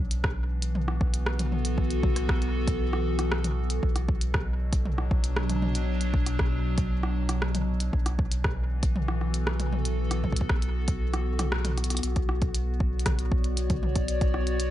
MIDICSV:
0, 0, Header, 1, 4, 480
1, 0, Start_track
1, 0, Key_signature, 2, "minor"
1, 0, Tempo, 512821
1, 1663, Time_signature, 4, 2, 24, 8
1, 13764, End_track
2, 0, Start_track
2, 0, Title_t, "Ambient pad"
2, 0, Program_c, 0, 92
2, 0, Note_on_c, 0, 52, 72
2, 0, Note_on_c, 0, 62, 95
2, 142, Note_on_c, 0, 59, 78
2, 613, Note_on_c, 0, 66, 73
2, 749, Note_on_c, 0, 69, 77
2, 1278, Note_off_c, 0, 62, 0
2, 3584, Note_off_c, 0, 52, 0
2, 3584, Note_on_c, 0, 47, 83
2, 3822, Note_on_c, 0, 54, 92
2, 3940, Note_on_c, 0, 62, 80
2, 4411, Note_off_c, 0, 69, 0
2, 4516, Note_off_c, 0, 59, 0
2, 4643, Note_off_c, 0, 66, 0
2, 7424, Note_off_c, 0, 47, 0
2, 7424, Note_on_c, 0, 52, 91
2, 7425, Note_off_c, 0, 54, 0
2, 7590, Note_on_c, 0, 59, 75
2, 7987, Note_on_c, 0, 66, 96
2, 8138, Note_on_c, 0, 69, 75
2, 8341, Note_off_c, 0, 62, 0
2, 11264, Note_off_c, 0, 52, 0
2, 11980, Note_on_c, 0, 73, 87
2, 11993, Note_on_c, 0, 74, 96
2, 12242, Note_off_c, 0, 69, 0
2, 13764, Note_off_c, 0, 59, 0
2, 13764, Note_off_c, 0, 66, 0
2, 13764, Note_off_c, 0, 73, 0
2, 13764, Note_off_c, 0, 74, 0
2, 13764, End_track
3, 0, Start_track
3, 0, Title_t, "Sub bass"
3, 0, Program_c, 1, 38
3, 0, Note_on_c, 1, 35, 88
3, 3560, Note_off_c, 1, 35, 0
3, 3583, Note_on_c, 1, 35, 92
3, 7399, Note_off_c, 1, 35, 0
3, 7424, Note_on_c, 1, 35, 87
3, 11240, Note_off_c, 1, 35, 0
3, 11263, Note_on_c, 1, 35, 92
3, 13764, Note_off_c, 1, 35, 0
3, 13764, End_track
4, 0, Start_track
4, 0, Title_t, "Drums"
4, 103, Note_on_c, 9, 42, 67
4, 197, Note_off_c, 9, 42, 0
4, 223, Note_on_c, 9, 37, 124
4, 224, Note_on_c, 9, 36, 127
4, 317, Note_off_c, 9, 36, 0
4, 317, Note_off_c, 9, 37, 0
4, 583, Note_on_c, 9, 42, 71
4, 677, Note_off_c, 9, 42, 0
4, 703, Note_on_c, 9, 45, 87
4, 796, Note_off_c, 9, 45, 0
4, 824, Note_on_c, 9, 37, 76
4, 917, Note_off_c, 9, 37, 0
4, 943, Note_on_c, 9, 37, 37
4, 944, Note_on_c, 9, 36, 111
4, 1037, Note_off_c, 9, 36, 0
4, 1037, Note_off_c, 9, 37, 0
4, 1064, Note_on_c, 9, 42, 66
4, 1158, Note_off_c, 9, 42, 0
4, 1183, Note_on_c, 9, 37, 119
4, 1277, Note_off_c, 9, 37, 0
4, 1305, Note_on_c, 9, 42, 52
4, 1305, Note_on_c, 9, 45, 78
4, 1398, Note_off_c, 9, 42, 0
4, 1398, Note_off_c, 9, 45, 0
4, 1424, Note_on_c, 9, 45, 80
4, 1517, Note_off_c, 9, 45, 0
4, 1543, Note_on_c, 9, 42, 71
4, 1637, Note_off_c, 9, 42, 0
4, 1663, Note_on_c, 9, 36, 89
4, 1757, Note_off_c, 9, 36, 0
4, 1783, Note_on_c, 9, 42, 50
4, 1877, Note_off_c, 9, 42, 0
4, 1903, Note_on_c, 9, 36, 116
4, 1903, Note_on_c, 9, 45, 95
4, 1997, Note_off_c, 9, 36, 0
4, 1997, Note_off_c, 9, 45, 0
4, 2024, Note_on_c, 9, 37, 36
4, 2024, Note_on_c, 9, 42, 66
4, 2118, Note_off_c, 9, 37, 0
4, 2118, Note_off_c, 9, 42, 0
4, 2143, Note_on_c, 9, 36, 127
4, 2144, Note_on_c, 9, 37, 126
4, 2237, Note_off_c, 9, 36, 0
4, 2237, Note_off_c, 9, 37, 0
4, 2264, Note_on_c, 9, 42, 35
4, 2358, Note_off_c, 9, 42, 0
4, 2503, Note_on_c, 9, 36, 110
4, 2504, Note_on_c, 9, 42, 69
4, 2597, Note_off_c, 9, 36, 0
4, 2598, Note_off_c, 9, 42, 0
4, 2744, Note_on_c, 9, 37, 73
4, 2837, Note_off_c, 9, 37, 0
4, 2984, Note_on_c, 9, 37, 77
4, 2984, Note_on_c, 9, 42, 64
4, 3078, Note_off_c, 9, 37, 0
4, 3078, Note_off_c, 9, 42, 0
4, 3103, Note_on_c, 9, 37, 120
4, 3197, Note_off_c, 9, 37, 0
4, 3224, Note_on_c, 9, 42, 51
4, 3224, Note_on_c, 9, 45, 81
4, 3317, Note_off_c, 9, 42, 0
4, 3317, Note_off_c, 9, 45, 0
4, 3463, Note_on_c, 9, 42, 66
4, 3557, Note_off_c, 9, 42, 0
4, 3583, Note_on_c, 9, 36, 88
4, 3677, Note_off_c, 9, 36, 0
4, 3704, Note_on_c, 9, 37, 60
4, 3704, Note_on_c, 9, 42, 49
4, 3797, Note_off_c, 9, 37, 0
4, 3797, Note_off_c, 9, 42, 0
4, 3824, Note_on_c, 9, 36, 116
4, 3917, Note_off_c, 9, 36, 0
4, 3944, Note_on_c, 9, 42, 66
4, 4037, Note_off_c, 9, 42, 0
4, 4063, Note_on_c, 9, 37, 121
4, 4064, Note_on_c, 9, 36, 126
4, 4156, Note_off_c, 9, 37, 0
4, 4157, Note_off_c, 9, 36, 0
4, 4423, Note_on_c, 9, 36, 107
4, 4424, Note_on_c, 9, 42, 68
4, 4517, Note_off_c, 9, 36, 0
4, 4518, Note_off_c, 9, 42, 0
4, 4543, Note_on_c, 9, 45, 90
4, 4637, Note_off_c, 9, 45, 0
4, 4663, Note_on_c, 9, 37, 76
4, 4757, Note_off_c, 9, 37, 0
4, 4783, Note_on_c, 9, 37, 37
4, 4784, Note_on_c, 9, 36, 107
4, 4877, Note_off_c, 9, 36, 0
4, 4877, Note_off_c, 9, 37, 0
4, 4903, Note_on_c, 9, 42, 64
4, 4997, Note_off_c, 9, 42, 0
4, 5022, Note_on_c, 9, 37, 122
4, 5115, Note_off_c, 9, 37, 0
4, 5144, Note_on_c, 9, 42, 50
4, 5144, Note_on_c, 9, 45, 85
4, 5237, Note_off_c, 9, 42, 0
4, 5237, Note_off_c, 9, 45, 0
4, 5263, Note_on_c, 9, 45, 88
4, 5357, Note_off_c, 9, 45, 0
4, 5383, Note_on_c, 9, 42, 65
4, 5476, Note_off_c, 9, 42, 0
4, 5623, Note_on_c, 9, 42, 50
4, 5717, Note_off_c, 9, 42, 0
4, 5744, Note_on_c, 9, 36, 108
4, 5837, Note_off_c, 9, 36, 0
4, 5864, Note_on_c, 9, 37, 39
4, 5864, Note_on_c, 9, 42, 67
4, 5957, Note_off_c, 9, 37, 0
4, 5957, Note_off_c, 9, 42, 0
4, 5982, Note_on_c, 9, 37, 113
4, 5984, Note_on_c, 9, 36, 122
4, 6076, Note_off_c, 9, 37, 0
4, 6077, Note_off_c, 9, 36, 0
4, 6343, Note_on_c, 9, 42, 66
4, 6344, Note_on_c, 9, 36, 108
4, 6437, Note_off_c, 9, 36, 0
4, 6437, Note_off_c, 9, 42, 0
4, 6583, Note_on_c, 9, 37, 77
4, 6676, Note_off_c, 9, 37, 0
4, 6823, Note_on_c, 9, 37, 75
4, 6823, Note_on_c, 9, 42, 64
4, 6917, Note_off_c, 9, 37, 0
4, 6917, Note_off_c, 9, 42, 0
4, 6944, Note_on_c, 9, 37, 111
4, 7037, Note_off_c, 9, 37, 0
4, 7064, Note_on_c, 9, 42, 52
4, 7064, Note_on_c, 9, 45, 87
4, 7157, Note_off_c, 9, 42, 0
4, 7157, Note_off_c, 9, 45, 0
4, 7303, Note_on_c, 9, 42, 65
4, 7397, Note_off_c, 9, 42, 0
4, 7424, Note_on_c, 9, 36, 84
4, 7517, Note_off_c, 9, 36, 0
4, 7544, Note_on_c, 9, 37, 64
4, 7544, Note_on_c, 9, 42, 52
4, 7637, Note_off_c, 9, 37, 0
4, 7637, Note_off_c, 9, 42, 0
4, 7663, Note_on_c, 9, 36, 106
4, 7757, Note_off_c, 9, 36, 0
4, 7783, Note_on_c, 9, 42, 66
4, 7877, Note_off_c, 9, 42, 0
4, 7903, Note_on_c, 9, 36, 122
4, 7903, Note_on_c, 9, 37, 112
4, 7996, Note_off_c, 9, 37, 0
4, 7997, Note_off_c, 9, 36, 0
4, 8263, Note_on_c, 9, 36, 99
4, 8263, Note_on_c, 9, 42, 68
4, 8357, Note_off_c, 9, 36, 0
4, 8357, Note_off_c, 9, 42, 0
4, 8383, Note_on_c, 9, 45, 101
4, 8476, Note_off_c, 9, 45, 0
4, 8502, Note_on_c, 9, 37, 79
4, 8596, Note_off_c, 9, 37, 0
4, 8623, Note_on_c, 9, 37, 40
4, 8716, Note_off_c, 9, 37, 0
4, 8743, Note_on_c, 9, 42, 63
4, 8836, Note_off_c, 9, 42, 0
4, 8862, Note_on_c, 9, 37, 113
4, 8956, Note_off_c, 9, 37, 0
4, 8982, Note_on_c, 9, 42, 51
4, 8982, Note_on_c, 9, 45, 89
4, 9076, Note_off_c, 9, 42, 0
4, 9076, Note_off_c, 9, 45, 0
4, 9103, Note_on_c, 9, 45, 89
4, 9196, Note_off_c, 9, 45, 0
4, 9222, Note_on_c, 9, 42, 67
4, 9316, Note_off_c, 9, 42, 0
4, 9462, Note_on_c, 9, 37, 64
4, 9462, Note_on_c, 9, 42, 57
4, 9556, Note_off_c, 9, 37, 0
4, 9556, Note_off_c, 9, 42, 0
4, 9582, Note_on_c, 9, 45, 96
4, 9583, Note_on_c, 9, 36, 48
4, 9663, Note_off_c, 9, 36, 0
4, 9663, Note_on_c, 9, 36, 69
4, 9675, Note_off_c, 9, 45, 0
4, 9702, Note_on_c, 9, 42, 71
4, 9743, Note_off_c, 9, 36, 0
4, 9743, Note_on_c, 9, 36, 77
4, 9795, Note_off_c, 9, 42, 0
4, 9823, Note_off_c, 9, 36, 0
4, 9823, Note_on_c, 9, 36, 125
4, 9823, Note_on_c, 9, 37, 118
4, 9916, Note_off_c, 9, 37, 0
4, 9917, Note_off_c, 9, 36, 0
4, 9943, Note_on_c, 9, 42, 38
4, 10037, Note_off_c, 9, 42, 0
4, 10182, Note_on_c, 9, 42, 72
4, 10183, Note_on_c, 9, 36, 103
4, 10275, Note_off_c, 9, 42, 0
4, 10277, Note_off_c, 9, 36, 0
4, 10423, Note_on_c, 9, 37, 83
4, 10423, Note_on_c, 9, 42, 39
4, 10517, Note_off_c, 9, 37, 0
4, 10517, Note_off_c, 9, 42, 0
4, 10662, Note_on_c, 9, 37, 83
4, 10662, Note_on_c, 9, 42, 68
4, 10662, Note_on_c, 9, 45, 87
4, 10756, Note_off_c, 9, 37, 0
4, 10756, Note_off_c, 9, 42, 0
4, 10756, Note_off_c, 9, 45, 0
4, 10782, Note_on_c, 9, 37, 113
4, 10876, Note_off_c, 9, 37, 0
4, 10902, Note_on_c, 9, 42, 54
4, 10902, Note_on_c, 9, 45, 86
4, 10995, Note_off_c, 9, 42, 0
4, 10995, Note_off_c, 9, 45, 0
4, 11022, Note_on_c, 9, 37, 39
4, 11022, Note_on_c, 9, 42, 58
4, 11082, Note_off_c, 9, 42, 0
4, 11082, Note_on_c, 9, 42, 70
4, 11116, Note_off_c, 9, 37, 0
4, 11142, Note_off_c, 9, 42, 0
4, 11142, Note_on_c, 9, 37, 38
4, 11142, Note_on_c, 9, 42, 79
4, 11182, Note_off_c, 9, 37, 0
4, 11182, Note_on_c, 9, 37, 33
4, 11202, Note_off_c, 9, 42, 0
4, 11202, Note_on_c, 9, 42, 91
4, 11222, Note_off_c, 9, 37, 0
4, 11222, Note_on_c, 9, 37, 26
4, 11263, Note_off_c, 9, 37, 0
4, 11263, Note_off_c, 9, 42, 0
4, 11263, Note_on_c, 9, 37, 21
4, 11263, Note_on_c, 9, 42, 85
4, 11303, Note_off_c, 9, 37, 0
4, 11303, Note_on_c, 9, 37, 16
4, 11343, Note_off_c, 9, 37, 0
4, 11343, Note_on_c, 9, 37, 14
4, 11356, Note_off_c, 9, 42, 0
4, 11382, Note_off_c, 9, 37, 0
4, 11382, Note_on_c, 9, 37, 39
4, 11382, Note_on_c, 9, 42, 37
4, 11383, Note_on_c, 9, 36, 102
4, 11476, Note_off_c, 9, 37, 0
4, 11476, Note_off_c, 9, 42, 0
4, 11477, Note_off_c, 9, 36, 0
4, 11502, Note_on_c, 9, 37, 66
4, 11596, Note_off_c, 9, 37, 0
4, 11622, Note_on_c, 9, 42, 38
4, 11623, Note_on_c, 9, 36, 115
4, 11716, Note_off_c, 9, 42, 0
4, 11717, Note_off_c, 9, 36, 0
4, 11743, Note_on_c, 9, 42, 82
4, 11836, Note_off_c, 9, 42, 0
4, 11983, Note_on_c, 9, 36, 102
4, 12077, Note_off_c, 9, 36, 0
4, 12163, Note_on_c, 9, 42, 41
4, 12223, Note_off_c, 9, 42, 0
4, 12223, Note_on_c, 9, 36, 102
4, 12223, Note_on_c, 9, 37, 121
4, 12223, Note_on_c, 9, 42, 86
4, 12223, Note_on_c, 9, 45, 93
4, 12316, Note_off_c, 9, 37, 0
4, 12316, Note_off_c, 9, 42, 0
4, 12316, Note_off_c, 9, 45, 0
4, 12317, Note_off_c, 9, 36, 0
4, 12343, Note_on_c, 9, 42, 38
4, 12437, Note_off_c, 9, 42, 0
4, 12463, Note_on_c, 9, 36, 121
4, 12557, Note_off_c, 9, 36, 0
4, 12583, Note_on_c, 9, 42, 38
4, 12676, Note_off_c, 9, 42, 0
4, 12703, Note_on_c, 9, 42, 84
4, 12796, Note_off_c, 9, 42, 0
4, 12822, Note_on_c, 9, 42, 56
4, 12822, Note_on_c, 9, 45, 83
4, 12823, Note_on_c, 9, 36, 108
4, 12916, Note_off_c, 9, 42, 0
4, 12916, Note_off_c, 9, 45, 0
4, 12917, Note_off_c, 9, 36, 0
4, 12943, Note_on_c, 9, 45, 86
4, 13036, Note_off_c, 9, 45, 0
4, 13062, Note_on_c, 9, 42, 55
4, 13063, Note_on_c, 9, 36, 108
4, 13156, Note_off_c, 9, 42, 0
4, 13157, Note_off_c, 9, 36, 0
4, 13183, Note_on_c, 9, 42, 84
4, 13276, Note_off_c, 9, 42, 0
4, 13303, Note_on_c, 9, 36, 122
4, 13303, Note_on_c, 9, 37, 37
4, 13303, Note_on_c, 9, 42, 38
4, 13397, Note_off_c, 9, 36, 0
4, 13397, Note_off_c, 9, 37, 0
4, 13397, Note_off_c, 9, 42, 0
4, 13423, Note_on_c, 9, 37, 66
4, 13517, Note_off_c, 9, 37, 0
4, 13543, Note_on_c, 9, 42, 41
4, 13637, Note_off_c, 9, 42, 0
4, 13663, Note_on_c, 9, 42, 84
4, 13756, Note_off_c, 9, 42, 0
4, 13764, End_track
0, 0, End_of_file